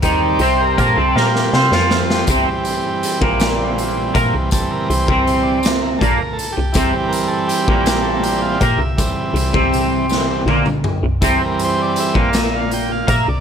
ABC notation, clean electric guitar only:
X:1
M:6/8
L:1/16
Q:3/8=54
K:Cmix
V:1 name="Clean electric guitar"
[_E,_E]2 [C,C]2 [B,B] [C,C] [B,B]2 [Cc] [F,F]3 | [C,C] z4 [B,,B,]4- [B,,B,] [B,B] C,- | C, z C, [C,C]4- [C,C] [B,,B,] z2 C, | [C,C] z4 [B,,B,]4- [B,,B,] [B,B] C,- |
C, z C, [C,C]4- [C,C] [B,,B,] z2 C, | [C,C] z4 [B,,B,]4- [B,,B,] [B,B] C, |]